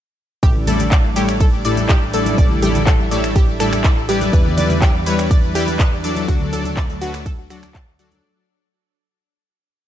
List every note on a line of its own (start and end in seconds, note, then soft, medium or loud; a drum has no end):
0.43 2.36 A1 medium
0.43 6.24 G3 medium
0.43 4.29 D4 medium
0.43 6.24 E4 medium
0.43 0.53 G4 loud
0.43 4.29 A4 medium
0.43 2.36 D5 medium
0.43 0.53 G5 medium
0.43 kick loud
0.43 closed hi-hat medium
0.43 ride medium
0.43 shaker soft
0.55 low conga medium
0.67 0.81 A2 medium
0.67 0.81 G3 medium
0.67 0.81 E4 medium
0.67 0.81 A4 medium
0.67 0.74 A4 medium
0.67 0.81 D5 loud
0.67 0.74 A5 medium
0.67 open hi-hat loud
0.67 ride medium
0.67 high conga medium
0.67 low conga medium
0.67 shaker medium
0.80 closed hi-hat medium
0.80 low conga medium
0.80 shaker soft
0.91 0.98 D5 medium
0.91 0.98 D6 medium
0.91 kick loud
0.91 clap loud
0.91 closed hi-hat medium
0.91 ride medium
0.91 shaker soft
1.04 high conga medium
1.16 1.25 A2 medium
1.16 1.24 G3 medium
1.16 1.24 E4 medium
1.16 1.26 G4 loud
1.16 1.25 A4 medium
1.16 1.24 C#5 medium
1.16 1.26 G5 medium
1.16 open hi-hat loud
1.16 ride medium
1.16 shaker medium
1.29 finger snap medium
1.29 closed hi-hat medium
1.29 shaker soft
1.40 1.47 A4 medium
1.40 1.47 A5 medium
1.40 kick loud
1.40 closed hi-hat medium
1.40 ride medium
1.40 high conga medium
1.40 shaker soft
1.65 1.78 A2 medium
1.65 1.78 G3 medium
1.65 1.78 E4 medium
1.65 1.78 A4 medium
1.65 1.71 D5 medium
1.65 1.78 D5 loud
1.65 1.72 D6 medium
1.65 open hi-hat loud
1.65 ride medium
1.65 shaker medium
1.77 closed hi-hat medium
1.77 high conga medium
1.77 shaker soft
1.89 1.99 G4 loud
1.89 1.99 G5 medium
1.89 kick loud
1.89 clap loud
1.89 closed hi-hat medium
1.89 ride medium
1.89 shaker soft
2.14 2.60 A2 medium
2.14 2.60 G3 medium
2.14 2.60 E4 medium
2.14 2.20 A4 medium
2.14 2.60 A4 medium
2.14 2.60 D5 loud
2.14 2.20 A5 medium
2.14 open hi-hat loud
2.14 ride medium
2.14 shaker medium
2.26 closed hi-hat medium
2.26 high conga medium
2.26 shaker soft
2.38 4.31 A1 medium
2.38 2.45 D5 medium
2.38 4.31 E5 medium
2.38 2.45 D6 medium
2.38 kick loud
2.38 closed hi-hat medium
2.38 ride medium
2.38 shaker soft
2.51 low conga medium
2.62 2.76 A2 medium
2.62 2.76 G3 medium
2.62 2.76 E4 medium
2.62 2.72 G4 loud
2.62 2.76 A4 medium
2.62 2.76 D5 loud
2.62 2.72 G5 medium
2.62 open hi-hat loud
2.62 ride medium
2.62 high conga loud
2.62 low conga medium
2.62 shaker medium
2.75 closed hi-hat medium
2.75 low conga loud
2.75 shaker soft
2.87 2.93 A4 medium
2.87 2.93 A5 medium
2.87 kick loud
2.87 clap loud
2.87 closed hi-hat medium
2.87 ride medium
2.87 shaker soft
3.00 high conga medium
3.11 3.20 A2 medium
3.11 3.20 G3 medium
3.11 3.20 E4 medium
3.11 3.20 A4 medium
3.11 3.20 C#5 loud
3.11 3.18 D5 medium
3.11 3.18 D6 medium
3.11 open hi-hat loud
3.11 ride medium
3.11 shaker medium
3.24 finger snap medium
3.24 closed hi-hat medium
3.24 shaker soft
3.35 3.45 G4 loud
3.35 3.45 G5 medium
3.35 kick loud
3.35 closed hi-hat medium
3.35 ride medium
3.35 high conga medium
3.35 shaker soft
3.60 3.73 A2 loud
3.60 3.73 G3 medium
3.60 3.73 E4 medium
3.60 3.67 A4 medium
3.60 3.73 A4 medium
3.60 3.73 D5 loud
3.60 3.67 A5 medium
3.60 finger snap medium
3.60 open hi-hat loud
3.60 ride medium
3.60 shaker medium
3.72 finger snap medium
3.72 closed hi-hat medium
3.72 high conga medium
3.72 shaker soft
3.84 3.91 D5 medium
3.84 3.91 D6 medium
3.84 kick loud
3.84 clap loud
3.84 closed hi-hat medium
3.84 ride medium
3.84 shaker soft
4.09 4.55 G3 medium
4.09 4.55 E4 medium
4.09 4.19 G4 loud
4.09 4.55 B4 medium
4.09 4.55 D5 loud
4.09 4.19 G5 medium
4.09 open hi-hat loud
4.09 ride medium
4.09 shaker medium
4.21 closed hi-hat medium
4.21 high conga medium
4.21 shaker soft
4.33 6.26 E2 medium
4.33 8.20 D4 medium
4.33 4.40 B4 medium
4.33 6.26 B4 medium
4.33 8.20 D5 medium
4.33 4.40 B5 medium
4.33 kick loud
4.33 closed hi-hat medium
4.33 ride medium
4.33 shaker soft
4.46 low conga medium
4.58 4.71 G3 medium
4.58 4.71 E4 medium
4.58 4.71 B4 medium
4.58 4.64 D5 medium
4.58 4.71 D5 loud
4.58 4.64 D6 medium
4.58 open hi-hat loud
4.58 ride medium
4.58 high conga loud
4.58 low conga medium
4.58 shaker medium
4.70 closed hi-hat medium
4.70 low conga loud
4.70 shaker soft
4.82 4.92 G4 loud
4.82 4.92 G5 medium
4.82 kick loud
4.82 clap loud
4.82 closed hi-hat medium
4.82 ride medium
4.82 shaker soft
4.95 high conga medium
5.06 5.15 G3 medium
5.06 5.15 E4 medium
5.06 5.15 B4 medium
5.06 5.13 B4 medium
5.06 5.15 C#5 loud
5.06 5.13 B5 medium
5.06 open hi-hat loud
5.06 ride medium
5.06 shaker medium
5.19 finger snap medium
5.19 closed hi-hat medium
5.19 shaker soft
5.31 5.37 D5 medium
5.31 5.37 D6 medium
5.31 kick loud
5.31 closed hi-hat medium
5.31 ride medium
5.31 high conga medium
5.31 shaker soft
5.55 5.68 G3 medium
5.55 5.68 E4 medium
5.55 5.65 G4 loud
5.55 5.68 B4 medium
5.55 5.68 D5 loud
5.55 5.65 G5 medium
5.55 open hi-hat loud
5.55 ride medium
5.55 shaker medium
5.67 closed hi-hat medium
5.67 high conga medium
5.67 shaker soft
5.79 5.86 B4 medium
5.79 5.86 B5 medium
5.79 kick loud
5.79 clap loud
5.79 closed hi-hat medium
5.79 ride medium
5.79 shaker soft
6.04 6.50 F#3 medium
6.04 6.50 D4 medium
6.04 6.50 A4 medium
6.04 6.50 D5 loud
6.04 6.11 D5 medium
6.04 6.11 D6 medium
6.04 open hi-hat loud
6.04 ride medium
6.04 shaker medium
6.16 closed hi-hat medium
6.16 high conga medium
6.16 shaker soft
6.28 8.21 D2 medium
6.28 8.22 F#3 medium
6.28 8.22 A3 medium
6.28 6.38 F#4 loud
6.28 8.22 A4 medium
6.28 6.38 F#5 medium
6.28 kick loud
6.28 closed hi-hat medium
6.28 ride medium
6.28 shaker soft
6.41 low conga medium
6.52 6.66 F#3 medium
6.52 6.66 D4 medium
6.52 6.66 A4 medium
6.52 6.59 A4 medium
6.52 6.66 D5 loud
6.52 6.59 A5 medium
6.52 open hi-hat loud
6.52 ride medium
6.52 high conga medium
6.52 low conga medium
6.52 shaker medium
6.65 closed hi-hat medium
6.65 low conga loud
6.65 shaker soft
6.77 6.84 D5 medium
6.77 6.84 D6 medium
6.77 kick loud
6.77 clap loud
6.77 closed hi-hat soft
6.77 ride medium
6.77 shaker soft
6.89 open hi-hat medium
6.89 high conga medium
7.01 7.10 F#3 medium
7.01 7.10 D4 medium
7.01 7.11 F#4 loud
7.01 7.10 A4 medium
7.01 7.10 B4 loud
7.01 7.11 F#5 medium
7.01 open hi-hat loud
7.01 ride medium
7.01 shaker medium
7.14 finger snap medium
7.14 closed hi-hat medium
7.14 shaker soft
7.26 7.32 A4 medium
7.26 7.32 A5 medium
7.26 kick loud
7.26 closed hi-hat medium
7.26 ride medium
7.26 high conga medium
7.26 shaker soft
7.50 7.64 F#3 medium
7.50 7.64 D4 medium
7.50 7.57 F#4 medium
7.50 7.64 A4 medium
7.50 7.64 D5 loud
7.50 7.57 F#5 medium
7.50 finger snap medium
7.50 open hi-hat loud
7.50 ride medium
7.50 shaker medium
7.63 finger snap medium
7.63 closed hi-hat medium
7.63 high conga medium
7.63 shaker soft
7.75 7.85 A5 medium
7.75 7.85 A6 medium
7.75 kick loud
7.75 clap loud
7.75 closed hi-hat medium
7.75 ride medium
7.75 shaker soft
7.99 8.22 F#3 loud
7.99 8.22 D4 medium
7.99 8.09 F#4 medium
7.99 8.22 A4 loud
7.99 8.22 D5 loud
7.99 8.09 F#5 medium
7.99 open hi-hat loud
7.99 ride medium
7.99 shaker medium
8.12 closed hi-hat medium
8.12 high conga loud
8.12 shaker soft